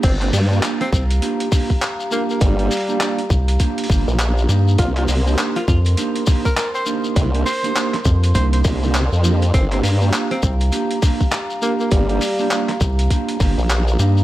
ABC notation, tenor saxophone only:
X:1
M:4/4
L:1/16
Q:"Swing 16ths" 1/4=101
K:Gm
V:1 name="Tenor saxophone"
C C z3 C C z6 z B, B, | G,6 z8 z2 | F F z3 F F z4 B B c z2 | z2 c3 z3 c c z6 |
C C z3 C C z6 z B, B, | G,6 z8 z2 |]